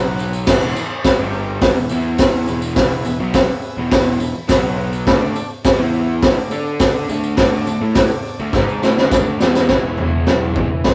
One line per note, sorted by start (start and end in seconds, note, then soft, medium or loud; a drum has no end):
0.00 0.43 B1 medium
0.00 0.46 B2 medium
0.00 0.47 F#3 loud
0.00 0.47 B3 loud
0.00 0.33 F#4 medium
0.00 0.33 B4 medium
0.00 0.33 F#5 medium
0.19 tambourine medium
0.33 tambourine medium
0.46 0.74 E1 loud
0.46 0.75 E2 medium
0.46 0.75 B2 medium
0.46 0.76 E3 loud
0.46 0.90 G#4 loud
0.46 0.90 B4 loud
0.46 0.90 E5 loud
0.46 kick loud
0.46 snare loud
0.46 crash loud
0.62 tambourine soft
0.76 muted overdriven electric guitar stroke medium
0.76 muted picked electric bass stroke soft
0.76 tambourine medium
0.91 tambourine soft
1.02 1.17 G#4 medium
1.02 1.18 B4 medium
1.02 1.18 E5 loud
1.02 kick loud
1.02 snare loud
1.02 open hi-hat medium
1.02 tambourine loud
1.16 1.72 G1 medium
1.16 1.75 G2 loud
1.16 1.76 D3 medium
1.16 1.76 G3 medium
1.16 1.52 G4 medium
1.16 1.52 D5 medium
1.16 1.53 G5 medium
1.16 tambourine soft
1.33 tambourine soft
1.60 1.75 G4 medium
1.60 1.76 D5 medium
1.60 1.76 G5 medium
1.60 kick loud
1.60 snare loud
1.60 open hi-hat medium
1.74 1.90 E1 medium
1.74 1.91 E2 medium
1.74 1.90 B2 medium
1.74 2.10 G#4 medium
1.74 2.10 B4 medium
1.74 2.11 E5 medium
1.74 tambourine soft
1.89 2.44 E2 medium
1.89 2.47 E3 medium
1.89 2.47 B3 medium
1.89 2.48 E4 loud
1.89 tambourine medium
2.04 tambourine soft
2.18 2.61 G#4 medium
2.18 2.62 B4 medium
2.18 2.62 E5 loud
2.18 kick loud
2.18 snare loud
2.18 open hi-hat medium
2.18 tambourine loud
2.48 3.01 E1 loud
2.48 3.04 E2 medium
2.48 3.04 B2 medium
2.48 3.05 E3 loud
2.48 tambourine medium
2.62 tambourine medium
2.74 3.18 G#4 loud
2.74 3.19 B4 loud
2.74 3.19 E5 loud
2.74 kick loud
2.74 snare loud
2.74 open hi-hat medium
2.91 tambourine soft
3.05 3.18 E1 medium
3.05 3.20 E2 medium
3.05 3.18 B2 medium
3.05 tambourine medium
3.19 3.46 B1 medium
3.19 3.47 B2 medium
3.19 3.48 F#3 medium
3.19 3.48 B3 loud
3.19 tambourine soft
3.33 3.76 G#4 medium
3.33 3.77 B4 medium
3.33 3.77 E5 loud
3.33 kick loud
3.33 snare loud
3.33 open hi-hat medium
3.33 tambourine loud
3.48 muted overdriven electric guitar stroke medium
3.48 muted picked electric bass stroke soft
3.48 tambourine soft
3.62 tambourine soft
3.77 4.17 E1 loud
3.77 4.19 E2 medium
3.77 4.20 B2 loud
3.77 4.20 E3 loud
3.89 4.33 G#4 medium
3.89 4.33 B4 medium
3.89 4.34 E5 loud
3.89 kick loud
3.89 snare loud
3.89 open hi-hat medium
4.06 tambourine soft
4.19 4.33 E1 medium
4.19 4.33 E2 medium
4.19 4.35 B2 medium
4.19 4.47 B5 medium
4.19 tambourine medium
4.34 muted picked electric bass stroke soft
4.34 muted overdriven electric guitar stroke medium
4.34 tambourine soft
4.47 5.03 B1 medium
4.47 5.05 B2 medium
4.47 5.06 F#3 loud
4.47 5.06 B3 loud
4.47 4.92 F#4 medium
4.47 4.91 B4 medium
4.47 4.75 F#5 loud
4.47 4.75 G#5 medium
4.47 kick loud
4.47 snare loud
4.47 open hi-hat medium
4.47 tambourine loud
4.77 5.04 F#5 medium
4.93 tambourine medium
5.05 5.33 D2 loud
5.05 5.35 D3 medium
5.05 5.35 A3 medium
5.05 5.49 D4 loud
5.05 5.35 D4 loud
5.05 5.49 A4 loud
5.05 5.50 D5 loud
5.05 kick loud
5.05 snare loud
5.05 open hi-hat medium
5.35 muted picked electric bass stroke soft
5.35 muted overdriven electric guitar stroke medium
5.35 tambourine medium
5.50 tambourine soft
5.63 5.78 D4 medium
5.63 5.79 A4 medium
5.63 5.79 D5 loud
5.63 kick loud
5.63 snare loud
5.63 open hi-hat medium
5.63 tambourine loud
5.78 6.32 E2 loud
5.78 6.35 E3 medium
5.78 6.36 B3 loud
5.78 6.36 E4 loud
5.78 6.14 E4 medium
5.78 6.14 B4 medium
5.78 6.15 E5 medium
5.78 tambourine soft
5.94 tambourine soft
6.23 6.38 E4 medium
6.23 6.38 B4 medium
6.23 6.38 E5 medium
6.23 kick loud
6.23 snare loud
6.23 open hi-hat medium
6.36 6.50 D2 medium
6.36 6.51 D3 medium
6.36 6.51 A3 medium
6.36 6.71 D4 medium
6.36 6.72 A4 medium
6.36 6.72 D5 loud
6.36 tambourine soft
6.51 7.05 D3 medium
6.51 7.08 D4 loud
6.51 7.08 A4 medium
6.51 7.09 D5 loud
6.51 tambourine medium
6.67 tambourine soft
6.79 7.22 D4 medium
6.79 7.23 A4 medium
6.79 kick loud
6.79 snare loud
6.79 open hi-hat medium
6.79 tambourine loud
7.09 7.62 D2 medium
7.09 7.66 D3 medium
7.09 7.66 A3 loud
7.09 7.67 D4 medium
7.09 tambourine medium
7.23 tambourine medium
7.37 7.80 D4 loud
7.37 7.81 A4 loud
7.37 7.81 D5 loud
7.37 kick loud
7.37 snare loud
7.37 open hi-hat medium
7.53 tambourine soft
7.66 7.80 D2 medium
7.66 7.81 D3 medium
7.66 7.80 A3 medium
7.66 tambourine medium
7.81 8.08 A2 medium
7.81 8.09 A3 medium
7.81 8.09 E4 medium
7.81 8.10 A4 medium
7.95 8.39 D4 medium
7.95 8.39 A4 medium
7.95 8.39 D5 medium
7.95 kick medium
7.95 snare loud
7.95 open hi-hat medium
7.95 tambourine loud
8.10 muted picked electric bass stroke soft
8.10 muted overdriven electric guitar stroke medium
8.10 tambourine soft
8.25 tambourine soft
8.39 8.53 D2 medium
8.39 8.53 D3 loud
8.39 8.53 A3 loud
8.39 tambourine soft
8.53 8.80 G#2 loud
8.53 8.82 G#3 medium
8.53 8.97 D4 medium
8.53 8.82 D#4 loud
8.53 8.82 G#4 medium
8.53 8.97 A4 medium
8.53 8.97 D5 loud
8.53 kick loud
8.53 snare medium
8.53 tambourine soft
8.69 tambourine soft
8.82 8.96 A2 medium
8.82 8.96 A3 medium
8.82 8.96 E4 loud
8.82 snare medium
8.82 tambourine medium
8.97 9.37 D2 loud
8.97 9.39 D3 medium
8.97 9.40 A3 medium
8.97 9.40 D4 loud
8.97 snare medium
9.11 9.55 D4 medium
9.11 9.55 A4 medium
9.11 9.55 D5 loud
9.11 kick loud
9.11 snare medium
9.11 tambourine loud
9.27 tambourine soft
9.40 9.68 E2 medium
9.40 9.67 E3 medium
9.40 9.68 B3 loud
9.40 9.69 E4 medium
9.40 snare loud
9.40 tambourine medium
9.54 snare medium
9.54 tambourine medium
9.67 9.97 E1 medium
9.67 9.97 E3 medium
9.67 9.99 G#3 medium
9.67 10.00 B3 loud
9.67 10.12 E4 loud
9.67 10.12 G#4 loud
9.67 10.12 B4 loud
9.67 kick loud
9.67 snare loud
9.67 floor tom medium
9.71 10.01 E4 medium
9.98 10.26 E1 medium
9.98 10.26 E3 medium
9.98 10.28 G#3 medium
9.98 10.28 B3 medium
9.98 10.29 E4 medium
9.98 floor tom medium
10.26 10.55 B1 medium
10.26 10.54 E3 medium
10.26 10.56 G#3 medium
10.26 10.57 B3 medium
10.26 10.70 E4 medium
10.26 10.70 G#4 medium
10.26 10.71 D5 medium
10.26 snare loud
10.26 floor tom medium
10.30 10.58 E4 loud
10.55 10.84 E1 medium
10.55 10.94 E3 medium
10.55 10.70 G#3 medium
10.55 10.69 B3 medium
10.55 10.69 E4 medium
10.55 kick medium
10.55 floor tom medium
10.70 muted overdriven electric guitar stroke medium
10.83 10.94 E1 medium
10.83 10.94 E4 medium
10.83 10.94 G#4 medium
10.83 10.94 D5 medium
10.83 kick loud
10.83 snare loud
10.83 floor tom medium